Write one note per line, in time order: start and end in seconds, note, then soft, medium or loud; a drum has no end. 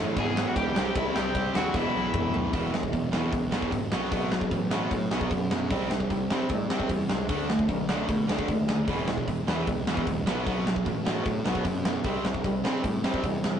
0.00 0.15 A2 loud
0.00 0.16 A2 medium
0.00 0.16 E3 loud
0.00 0.18 E3 medium
0.00 0.16 A3 loud
0.00 0.18 A3 medium
0.16 0.44 G#1 loud
0.16 0.34 E2 loud
0.16 0.35 B2 loud
0.16 0.36 E3 loud
0.16 0.46 G#4 medium
0.16 kick loud
0.16 ride medium
0.20 0.47 G#5 loud
0.35 0.55 E2 loud
0.35 0.55 B2 medium
0.35 0.57 E3 loud
0.35 snare loud
0.48 0.56 F#4 medium
0.48 0.56 F#5 medium
0.56 0.70 C#2 loud
0.56 0.75 E2 medium
0.56 0.74 B2 loud
0.56 0.75 E3 loud
0.56 0.94 G4 medium
0.56 0.96 G5 medium
0.56 kick loud
0.56 ride medium
0.75 0.90 C2 medium
0.75 0.93 C3 medium
0.75 0.93 G3 medium
0.75 0.94 C4 loud
0.75 snare loud
0.94 1.09 C2 medium
0.94 1.13 C3 loud
0.94 1.14 G3 medium
0.94 1.14 C4 loud
0.94 1.15 E4 medium
0.94 1.15 E5 medium
0.94 kick loud
0.94 ride medium
1.14 1.29 C2 medium
1.14 1.33 C3 medium
1.14 1.34 G3 loud
1.14 1.34 C4 loud
1.14 1.52 G4 medium
1.14 1.55 G5 medium
1.14 snare loud
1.34 1.48 C2 loud
1.34 1.53 C3 medium
1.34 1.54 G3 medium
1.34 1.54 C4 medium
1.34 kick loud
1.34 ride medium
1.54 1.69 D#2 medium
1.54 1.73 C3 medium
1.54 1.74 G3 medium
1.54 1.74 C4 loud
1.54 1.74 F#4 medium
1.54 1.77 F#5 medium
1.54 snare loud
1.74 1.88 E1 medium
1.74 1.93 E2 loud
1.74 1.93 B2 loud
1.74 1.94 E3 loud
1.74 2.31 E4 medium
1.74 2.35 E5 medium
1.74 kick loud
1.74 snare medium
1.94 2.09 B1 loud
1.94 2.13 E2 medium
1.94 2.13 B2 medium
1.94 2.14 E3 loud
2.14 2.28 E1 medium
2.14 2.31 E2 medium
2.14 2.32 B2 loud
2.14 2.33 E3 loud
2.14 kick loud
2.14 mid tom loud
2.33 2.48 B1 medium
2.33 2.52 E2 medium
2.33 2.52 B2 loud
2.33 2.53 E3 medium
2.33 floor tom loud
2.53 2.70 E1 medium
2.53 2.72 E2 loud
2.53 2.72 B2 medium
2.53 2.73 E3 loud
2.53 kick loud
2.53 open hi-hat medium
2.73 2.90 E1 medium
2.73 2.92 E2 medium
2.73 2.92 B2 medium
2.73 2.93 E3 medium
2.73 snare loud
2.83 kick medium
2.93 3.09 E1 loud
2.93 3.11 E2 medium
2.93 3.12 B2 medium
2.93 3.12 E3 medium
2.93 kick medium
2.93 open hi-hat soft
3.12 3.31 E2 medium
3.12 3.30 E2 medium
3.12 3.32 B2 medium
3.12 3.32 E3 medium
3.12 snare loud
3.32 3.49 C#2 medium
3.32 3.51 E2 medium
3.32 3.52 B2 medium
3.32 3.53 E3 loud
3.32 kick loud
3.32 open hi-hat medium
3.52 3.72 E2 medium
3.52 3.70 E2 medium
3.52 3.72 B2 medium
3.52 3.73 E3 medium
3.52 snare loud
3.62 kick medium
3.72 3.89 G#1 medium
3.72 3.92 E2 loud
3.72 3.92 B2 medium
3.72 3.92 E3 loud
3.72 kick medium
3.72 open hi-hat medium
3.92 4.09 B1 medium
3.92 4.10 B2 medium
3.92 4.11 F#3 medium
3.92 4.12 B3 medium
3.92 snare loud
4.11 4.28 B1 medium
4.11 4.31 B2 medium
4.11 4.32 F#3 medium
4.11 4.33 B3 loud
4.11 kick loud
4.11 open hi-hat medium
4.31 4.48 B1 medium
4.31 4.51 B2 medium
4.31 4.51 F#3 medium
4.31 4.52 B3 loud
4.31 snare loud
4.41 kick medium
4.51 4.84 A1 medium
4.51 4.71 B2 medium
4.51 4.72 F#3 medium
4.51 4.72 B3 medium
4.51 kick medium
4.51 open hi-hat medium
4.71 4.90 B2 medium
4.71 4.91 F#3 medium
4.71 4.91 B3 loud
4.71 snare loud
4.91 5.08 A2 medium
4.91 5.10 B2 medium
4.91 5.10 F#3 medium
4.91 5.11 B3 medium
4.91 kick loud
4.91 open hi-hat medium
5.11 5.27 B1 medium
5.11 5.29 B2 medium
5.11 5.29 F#3 medium
5.11 5.30 B3 medium
5.11 snare loud
5.21 kick medium
5.30 5.72 F#2 medium
5.30 5.49 B2 medium
5.30 5.49 F#3 loud
5.30 5.50 B3 loud
5.30 kick loud
5.30 open hi-hat medium
5.50 5.69 B2 medium
5.50 5.70 F#3 medium
5.50 5.70 B3 loud
5.50 snare loud
5.70 5.87 C2 medium
5.70 5.89 C3 loud
5.70 5.90 G3 loud
5.70 5.90 C4 loud
5.70 kick loud
5.70 open hi-hat medium
5.90 6.07 C2 loud
5.90 6.09 C3 medium
5.90 6.09 G3 loud
5.90 6.10 C4 medium
5.90 snare loud
6.00 kick medium
6.10 6.27 C2 loud
6.10 6.28 C3 medium
6.10 6.29 G3 loud
6.10 6.29 C4 loud
6.10 kick medium
6.10 open hi-hat soft
6.30 6.48 C3 medium
6.30 6.47 C3 medium
6.30 6.49 G3 medium
6.30 6.49 C4 loud
6.30 snare loud
6.49 6.66 A2 medium
6.49 6.68 C3 loud
6.49 6.69 G3 medium
6.49 6.69 C4 loud
6.49 kick loud
6.49 open hi-hat medium
6.69 6.86 C3 medium
6.69 6.89 C3 medium
6.69 6.89 G3 medium
6.69 6.90 C4 medium
6.69 snare loud
6.80 kick medium
6.89 7.06 E2 medium
6.89 7.09 C3 loud
6.89 7.09 G3 loud
6.89 7.10 C4 loud
6.89 kick loud
6.89 open hi-hat medium
7.10 7.26 C#2 medium
7.10 7.28 C3 medium
7.10 7.29 G3 medium
7.10 7.29 C4 medium
7.10 snare loud
7.29 7.45 D2 medium
7.29 7.48 D3 medium
7.29 7.49 A3 medium
7.29 7.49 D4 loud
7.29 kick loud
7.29 open hi-hat medium
7.49 7.66 D2 medium
7.49 7.67 D3 medium
7.49 7.68 A3 medium
7.49 7.68 D4 loud
7.49 snare loud
7.59 kick medium
7.68 8.02 B1 medium
7.68 7.87 D3 medium
7.68 7.87 A3 medium
7.68 7.88 D4 medium
7.68 kick medium
7.68 open hi-hat medium
7.88 8.07 D3 medium
7.88 8.08 A3 medium
7.88 8.08 D4 medium
7.88 snare loud
8.08 8.25 B2 medium
8.08 8.27 D3 loud
8.08 8.28 A3 loud
8.08 8.28 D4 medium
8.08 kick loud
8.08 open hi-hat medium
8.28 8.45 D2 medium
8.28 8.47 D3 medium
8.28 8.48 A3 medium
8.28 8.48 D4 medium
8.28 snare loud
8.39 kick loud
8.48 8.81 D#2 medium
8.48 8.67 D3 loud
8.48 8.68 A3 loud
8.48 8.69 D4 medium
8.48 kick medium
8.48 open hi-hat medium
8.69 8.87 D3 medium
8.69 8.88 A3 medium
8.69 8.88 D4 loud
8.69 snare loud
8.88 9.04 E1 medium
8.88 9.07 E2 medium
8.88 9.08 B2 loud
8.88 9.08 E3 loud
8.88 kick loud
8.88 open hi-hat medium
9.07 9.24 E1 medium
9.07 9.26 E2 medium
9.07 9.27 B2 medium
9.07 9.28 E3 loud
9.07 snare loud
9.18 kick medium
9.28 9.44 E1 loud
9.28 9.47 E2 medium
9.28 9.48 B2 medium
9.28 9.48 E3 medium
9.28 kick medium
9.28 open hi-hat medium
9.47 9.64 E2 medium
9.47 9.66 E2 medium
9.47 9.67 B2 medium
9.47 9.67 E3 loud
9.47 snare loud
9.67 9.84 C#2 medium
9.67 9.87 E2 loud
9.67 9.88 B2 medium
9.67 9.89 E3 medium
9.67 kick loud
9.67 open hi-hat medium
9.87 10.04 E2 medium
9.87 10.07 E2 medium
9.87 10.07 B2 medium
9.87 10.08 E3 loud
9.87 snare loud
9.97 kick medium
10.07 10.23 C#2 medium
10.07 10.26 E2 loud
10.07 10.26 B2 loud
10.07 10.27 E3 loud
10.07 kick medium
10.07 open hi-hat medium
10.26 10.43 B1 medium
10.26 10.46 B2 medium
10.26 10.47 F#3 medium
10.26 10.47 B3 loud
10.26 snare loud
10.46 10.63 B1 medium
10.46 10.66 B2 medium
10.46 10.67 F#3 loud
10.46 10.67 B3 loud
10.46 kick loud
10.46 open hi-hat medium
10.66 10.83 B1 medium
10.66 10.85 B2 medium
10.66 10.86 F#3 loud
10.66 10.86 B3 loud
10.66 snare loud
10.76 kick medium
10.86 11.19 A1 medium
10.86 11.05 B2 medium
10.86 11.06 F#3 medium
10.86 11.06 B3 medium
10.86 kick medium
10.86 open hi-hat soft
11.06 11.25 B2 medium
11.06 11.26 F#3 medium
11.06 11.26 B3 loud
11.06 snare loud
11.26 11.42 A2 loud
11.26 11.45 B2 medium
11.26 11.45 F#3 loud
11.26 11.46 B3 loud
11.26 kick loud
11.26 open hi-hat medium
11.46 11.62 B1 medium
11.46 11.64 B2 medium
11.46 11.65 F#3 medium
11.46 11.65 B3 medium
11.46 snare loud
11.55 kick medium
11.65 11.98 F#2 medium
11.65 11.84 B2 medium
11.65 11.84 F#3 loud
11.65 11.85 B3 loud
11.65 kick medium
11.65 open hi-hat medium
11.85 12.04 B2 medium
11.85 12.04 F#3 medium
11.85 12.05 B3 medium
11.85 snare loud
12.04 12.21 C2 medium
12.04 12.24 C3 loud
12.04 12.24 G3 loud
12.04 12.24 C4 medium
12.04 kick loud
12.04 open hi-hat medium
12.25 12.41 C2 medium
12.25 12.43 C3 medium
12.25 12.43 G3 medium
12.25 12.44 C4 medium
12.25 snare loud
12.34 kick medium
12.44 12.61 C2 medium
12.44 12.63 C3 medium
12.44 12.63 G3 loud
12.44 12.64 C4 loud
12.44 kick medium
12.44 open hi-hat soft
12.64 12.82 C3 medium
12.64 12.81 C3 medium
12.64 12.83 G3 medium
12.64 12.84 C4 loud
12.64 snare loud
12.83 13.01 A2 medium
12.83 13.03 C3 medium
12.83 13.04 G3 loud
12.83 13.04 C4 loud
12.83 kick loud
12.83 open hi-hat medium
13.04 13.21 C3 medium
13.04 13.23 C3 medium
13.04 13.24 G3 loud
13.04 13.24 C4 loud
13.04 snare loud
13.14 kick medium
13.23 13.40 E2 medium
13.23 13.42 C3 loud
13.23 13.42 G3 loud
13.23 13.43 C4 loud
13.23 kick loud
13.23 open hi-hat medium
13.43 13.60 E2 medium
13.43 13.60 C3 medium
13.43 13.60 G3 medium
13.43 13.60 C4 loud
13.43 snare loud